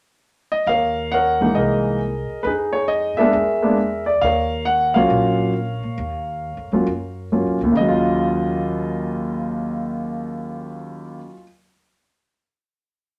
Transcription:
0.52 D#5
0.66 D#2 A#4 C#5 F5
1.12 A#4 C#5 F#5
1.41 E3 G#3 A#3 D#4
1.55 C2 G#4 A#4 D#5
2.29 muted upright bass stroke
2.43 F2 D#4 G#4 B4
2.73 C#5
2.88 D#5
3.17 G#3 A#3 B3 D4 G#4 A#4 E5, muted upright bass stroke
3.33 E2
3.62 G#3 A#3 B3 D4
4.06 D5
4.21 D#2 A#4 C#5 F5
4.65 F#5
4.94 C#2 F#3 A#3 C#4 F4 A#4 C#5 F5
5.10 A#1
5.83 A#2
5.98 D#2
6.57 F2
6.72 E2 F#3 A#3 C#4 F4
6.87 F#2
7.32 F#3 A#3 C#4 F4
7.46 F2
7.61 D2 D#2
7.72 D#2 C#3
7.77 F#3 D#5
7.88 F4

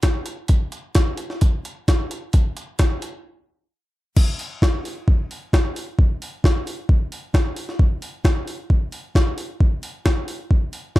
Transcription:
0.03 kick, snare, closed hi-hat
0.26 closed hi-hat
0.48 kick, closed hi-hat
0.72 closed hi-hat
0.95 kick, snare, closed hi-hat
1.17 closed hi-hat
1.30 snare
1.41 kick, closed hi-hat
1.65 closed hi-hat
1.88 kick, snare, closed hi-hat
2.11 closed hi-hat
2.33 kick, closed hi-hat
2.57 closed hi-hat
2.79 kick, snare, closed hi-hat
3.02 closed hi-hat
4.17 kick, crash
4.39 open hi-hat
4.62 kick, snare
4.85 open hi-hat
5.08 kick
5.31 open hi-hat
5.53 kick, snare
5.76 open hi-hat
5.99 kick
6.22 open hi-hat
6.44 kick, snare
6.67 open hi-hat
6.89 kick
7.12 open hi-hat
7.34 kick, snare
7.56 open hi-hat
7.69 snare
7.79 kick
8.02 open hi-hat
8.25 kick, snare
8.47 open hi-hat
8.70 kick
8.92 open hi-hat
9.15 kick, snare
9.38 open hi-hat
9.60 kick
9.83 open hi-hat
10.06 kick, snare
10.28 open hi-hat
10.51 kick
10.73 open hi-hat
10.96 kick, snare

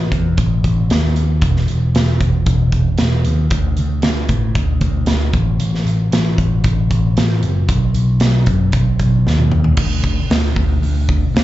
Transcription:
Already playing: A1
0.11 E2, kick, closed hi-hat
0.38 A1, kick, closed hi-hat
0.64 A1, kick, closed hi-hat
0.90 D#2, snare, closed hi-hat
1.16 closed hi-hat
1.41 E1, kick, closed hi-hat
1.56 snare
1.68 E1, closed hi-hat
1.94 E1, snare, closed hi-hat
2.20 E1, kick, closed hi-hat
2.46 E1, kick, closed hi-hat
2.72 E1, kick, closed hi-hat
2.98 E1, snare, closed hi-hat
3.25 D#2, closed hi-hat
3.50 D2, kick, closed hi-hat
3.77 D2, closed hi-hat
4.02 D2, snare, closed hi-hat
4.29 A2, kick, closed hi-hat
4.55 D2, kick, closed hi-hat
4.81 D2, kick, closed hi-hat
5.06 D2, snare, closed hi-hat
5.33 A1, kick, closed hi-hat
5.60 A1, closed hi-hat
5.75 snare
5.86 A1, closed hi-hat
6.12 A1, snare, closed hi-hat
6.38 A1, kick, closed hi-hat
6.64 A1, kick, closed hi-hat
6.90 A1, kick, closed hi-hat
7.17 A1, snare, closed hi-hat
7.43 F#1, closed hi-hat
7.68 B1, kick, closed hi-hat
7.95 B1, closed hi-hat
8.20 B1, snare, closed hi-hat
8.46 F#2, kick, closed hi-hat
8.72 B1, kick, closed hi-hat
8.99 B1, kick, closed hi-hat
9.26 D#2, snare
9.39 high tom
9.52 mid tom
9.64 floor tom
9.77 D2, kick, crash
10.04 kick
10.30 D2, snare, open hi-hat
10.56 D2, kick
10.82 D2, open hi-hat
11.09 kick
11.35 D2, snare, open hi-hat

